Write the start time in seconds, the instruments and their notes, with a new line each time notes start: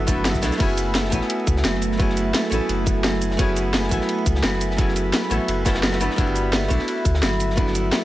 Already playing: vibraphone F#3 F#4 A4, analog synth pad E5 B5
0.07 sub bass E1, hollow-body jazz guitar A3 B3 D4 E4 A4, kick, closed hi-hat, ride, shaker
0.17 sub bass G1
0.25 vibraphone F#3, snare, closed hi-hat, ride
0.35 kick, snare, shaker
0.42 sub bass B1, hollow-body jazz guitar A3 B3 D4 E4 A4, snare, closed hi-hat, ride, shaker
0.52 snare, shaker
0.58 sub bass F#1, hollow-body jazz guitar A3 B3 C#4 E4, analog synth pad A3 G#5 B5, vibraphone F#4, kick, closed hi-hat, crash, ride
0.62 hollow-body jazz guitar G#4
0.70 ride
0.78 closed hi-hat, ride, shaker
0.95 vibraphone A4, snare, closed hi-hat, ride
1.05 snare
1.10 sub bass A1, hollow-body jazz guitar A3 B3 C#4 E4, kick, closed hi-hat, ride, shaker
1.14 hollow-body jazz guitar G#5
1.21 snare
1.30 vibraphone F#4, closed hi-hat, ride
1.39 ride
1.47 sub bass C#2, kick, closed hi-hat, ride, shaker
1.57 snare
1.64 sub bass F#1, vibraphone F#3, snare, closed hi-hat, ride
1.75 snare
1.82 closed hi-hat, ride, shaker
1.92 snare
1.97 hollow-body jazz guitar A3 B3 C#4 E4, vibraphone F#4, kick, closed hi-hat, ride
2.02 hollow-body jazz guitar G#4
2.09 snare
2.17 closed hi-hat, ride, shaker
2.34 vibraphone A4, snare, closed hi-hat, ride
2.44 snare
2.50 sub bass A1, hollow-body jazz guitar A3 B3 C#4 E4, closed hi-hat, ride, shaker
2.54 hollow-body jazz guitar A4
2.69 sub bass F#1, vibraphone F#4, closed hi-hat, ride
2.86 kick, closed hi-hat, ride, shaker
3.04 vibraphone F#3, snare, closed hi-hat, ride
3.13 snare
3.21 closed hi-hat, ride, shaker
3.31 snare
3.37 sub bass F#1, hollow-body jazz guitar A3 B3 C#4 E4, vibraphone F#4, kick, closed hi-hat, ride
3.41 hollow-body jazz guitar G#4
3.49 ride
3.57 closed hi-hat, ride, shaker
3.74 vibraphone A4, snare, closed hi-hat, ride
3.83 snare
3.89 sub bass A1, hollow-body jazz guitar A3 B3 E4, kick, closed hi-hat, ride, shaker
3.93 hollow-body jazz guitar G#5
4.01 snare
4.09 vibraphone F#4, closed hi-hat, ride
4.18 ride
4.26 sub bass C#2, kick, closed hi-hat, ride, shaker
4.36 snare
4.43 sub bass F#1, vibraphone F#3, snare, closed hi-hat, ride
4.53 snare
4.61 closed hi-hat, ride, shaker
4.71 snare
4.76 hollow-body jazz guitar A3 B3 C#4 E4, vibraphone F#4, kick, closed hi-hat, ride
4.81 hollow-body jazz guitar G#4
4.89 snare
4.96 closed hi-hat, ride, shaker
5.13 vibraphone A4, snare, closed hi-hat, ride
5.22 snare
5.30 sub bass A1, hollow-body jazz guitar A3 B3 C#4 E4 A4, closed hi-hat, ride, shaker
5.48 sub bass F#1, vibraphone F#4, closed hi-hat, ride
5.65 sub bass E1, hollow-body jazz guitar A3 B3 C#4 E4 A4, kick, snare, closed hi-hat, ride, shaker
5.75 sub bass F#1, snare, ride
5.83 vibraphone F#3, snare, closed hi-hat, ride
5.92 snare, ride
6.00 sub bass G1, hollow-body jazz guitar A3 B3 D4 E4 A4, analog synth pad E5, closed hi-hat, ride, shaker
6.10 snare
6.16 sub bass G1, hollow-body jazz guitar A3 B3 D4 E4, vibraphone F#4, kick, closed hi-hat, ride
6.20 hollow-body jazz guitar G3
6.27 ride
6.36 closed hi-hat, ride, shaker
6.53 vibraphone A4, snare, closed hi-hat, ride
6.63 snare
6.68 sub bass B1, hollow-body jazz guitar A3 B3 D4 E4, kick, closed hi-hat, ride, shaker
6.79 snare
6.88 vibraphone F#4, closed hi-hat, ride
6.97 ride
7.05 sub bass D2, kick, closed hi-hat, ride, shaker
7.15 snare
7.23 sub bass G1, vibraphone F#3, snare, closed hi-hat, ride
7.32 snare
7.40 closed hi-hat, ride, shaker
7.50 snare
7.56 hollow-body jazz guitar A3 B3 D4 E4, vibraphone F#4, kick, closed hi-hat, ride
7.67 snare
7.75 closed hi-hat, ride, shaker
7.92 vibraphone A4, snare, closed hi-hat, ride